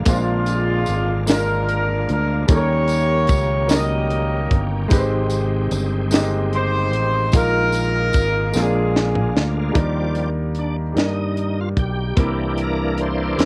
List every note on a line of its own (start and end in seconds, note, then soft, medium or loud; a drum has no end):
0.00 2.46 D3 medium
0.00 0.05 G#3 medium
0.00 2.46 G#3 medium
0.00 0.06 A#3 medium
0.00 2.46 A#3 medium
0.00 0.13 D4 medium
0.00 0.07 F4 medium
0.00 2.46 F4 medium
0.00 2.51 B4 medium
0.00 0.09 C5 medium
0.05 0.84 A#1 loud
0.05 1.24 A#2 medium
0.05 1.15 G#3 medium
0.05 1.15 A#3 medium
0.05 0.13 C4 soft
0.05 1.16 F4 medium
0.05 1.16 C5 medium
0.05 kick loud
0.05 closed hi-hat loud
0.05 tambourine medium
0.11 1.26 G#3 medium
0.11 1.26 D4 medium
0.11 1.19 D4 medium
0.11 1.27 F4 loud
0.46 closed hi-hat medium
0.46 tambourine medium
0.86 2.05 G#1 medium
0.86 closed hi-hat soft
0.86 tambourine medium
1.26 2.36 G#3 medium
1.26 2.36 A#3 medium
1.26 2.37 D4 medium
1.26 2.37 F4 medium
1.26 2.37 A#4 medium
1.26 snare loud
1.26 closed hi-hat medium
1.26 tambourine loud
1.32 2.47 D4 medium
1.32 2.47 F4 medium
1.32 2.11 A#4 loud
1.69 closed hi-hat soft
2.09 2.47 D2 medium
2.09 2.48 A#4 medium
2.09 closed hi-hat soft
2.46 3.26 D#2 loud
2.46 3.66 D#3 medium
2.46 3.56 G3 medium
2.46 3.57 A#3 medium
2.46 4.88 A#3 medium
2.46 4.87 C#4 medium
2.46 3.58 C#4 medium
2.46 3.58 D#4 medium
2.46 4.87 G4 medium
2.46 kick loud
2.46 closed hi-hat loud
2.46 tambourine medium
2.50 4.88 D#3 medium
2.50 3.68 G4 medium
2.50 2.56 A4 medium
2.50 3.68 A#4 medium
2.55 3.62 A#4 medium
2.55 3.74 C#5 loud
2.88 closed hi-hat medium
2.88 tambourine medium
3.27 4.47 C#2 medium
3.27 kick medium
3.27 closed hi-hat soft
3.27 tambourine medium
3.66 3.75 F#3 medium
3.66 4.78 A#3 medium
3.66 4.78 C#4 medium
3.66 4.78 D#4 medium
3.66 closed hi-hat medium
3.66 tambourine loud
3.71 4.80 G3 medium
3.71 4.88 G4 medium
3.71 4.79 A#4 medium
3.71 4.88 A#4 medium
3.71 4.63 D#5 medium
3.71 snare loud
4.10 closed hi-hat soft
4.50 4.88 G1 medium
4.50 kick medium
4.50 closed hi-hat soft
4.88 5.68 G#1 loud
4.88 6.08 C3 medium
4.88 7.30 D#3 medium
4.88 5.98 G#3 medium
4.88 7.30 G#3 medium
4.88 5.99 C4 medium
4.88 7.30 C4 medium
4.88 5.99 D#4 medium
4.88 6.00 G4 medium
4.88 7.30 G4 medium
4.88 kick loud
4.88 closed hi-hat loud
4.88 tambourine medium
4.92 4.99 B4 medium
4.98 6.03 C5 medium
5.30 closed hi-hat medium
5.30 tambourine medium
5.71 6.93 G1 loud
5.71 closed hi-hat soft
5.71 tambourine medium
6.11 7.20 G#3 medium
6.11 6.19 A#3 medium
6.11 7.21 D#4 medium
6.11 7.21 G4 medium
6.11 7.22 D#5 medium
6.11 snare loud
6.11 closed hi-hat medium
6.11 tambourine loud
6.18 7.24 C4 medium
6.53 7.31 D#4 medium
6.53 7.31 G4 medium
6.53 7.31 C5 loud
6.53 closed hi-hat soft
6.93 7.30 A1 loud
6.93 closed hi-hat soft
7.32 8.10 A#1 loud
7.32 8.51 A#2 medium
7.32 7.41 D3 medium
7.32 8.41 G#3 medium
7.32 8.54 G#3 medium
7.32 8.42 A#3 medium
7.32 8.55 A#3 medium
7.32 8.42 D#4 medium
7.32 8.55 F4 medium
7.32 8.42 F4 medium
7.32 kick loud
7.32 closed hi-hat loud
7.32 tambourine medium
7.36 8.52 D#4 medium
7.36 8.52 F4 medium
7.36 8.43 A#4 medium
7.36 8.56 A#4 loud
7.42 8.59 D#3 medium
7.72 closed hi-hat medium
7.72 tambourine medium
8.13 8.51 G#1 medium
8.13 kick medium
8.13 closed hi-hat soft
8.13 tambourine medium
8.53 9.32 A#1 loud
8.53 9.72 A#2 medium
8.53 8.62 C#3 soft
8.53 9.62 G#3 medium
8.53 9.76 G#3 medium
8.53 9.62 A#3 medium
8.53 9.76 A#3 medium
8.53 8.61 C4 soft
8.53 9.73 D4 medium
8.53 9.63 F4 medium
8.53 9.76 F4 medium
8.53 snare medium
8.53 tambourine loud
8.57 9.73 F4 medium
8.57 9.47 G#4 medium
8.57 9.64 A#4 medium
8.62 9.80 D3 medium
8.62 9.66 D4 medium
8.96 snare medium
9.15 mid tom medium
9.36 9.73 D2 medium
9.36 snare medium
9.72 10.92 D#2 medium
9.72 10.92 D#3 medium
9.72 10.82 G3 medium
9.72 10.82 A#3 medium
9.72 10.83 D4 medium
9.72 10.83 D#4 medium
9.72 10.84 A#4 medium
9.72 kick loud
9.72 closed hi-hat medium
9.76 10.30 F3 soft
9.76 10.29 G3 soft
9.76 10.30 D5 soft
10.15 closed hi-hat soft
10.55 closed hi-hat soft
10.59 10.76 D4 medium
10.92 11.73 G2 medium
10.92 12.02 G3 medium
10.92 12.04 A#3 soft
10.92 12.04 D4 medium
10.92 12.04 D#4 soft
10.97 11.60 D#4 medium
10.97 12.05 A#4 medium
10.97 snare loud
10.97 closed hi-hat medium
11.37 closed hi-hat soft
11.61 11.69 F4 medium
11.77 12.14 B1 medium
11.77 12.61 G4 medium
11.77 kick medium
11.77 closed hi-hat soft
12.15 13.34 C2 medium
12.15 13.34 C3 soft
12.15 13.45 E3 soft
12.15 13.25 G3 medium
12.15 13.25 A#3 medium
12.15 13.45 A#3 soft
12.15 13.25 C4 medium
12.15 13.26 E4 medium
12.15 13.26 A#4 medium
12.15 kick loud
12.15 closed hi-hat medium
12.20 13.45 D4 medium
12.58 closed hi-hat soft
12.64 13.02 A#4 medium
12.98 13.41 C5 medium
12.98 closed hi-hat soft
13.35 13.45 E2 medium
13.35 13.45 G3 medium
13.35 13.45 A#3 medium
13.35 13.45 C4 medium
13.35 13.45 E4 medium
13.39 13.45 A#4 medium
13.39 13.45 C5 medium
13.39 snare loud
13.39 closed hi-hat medium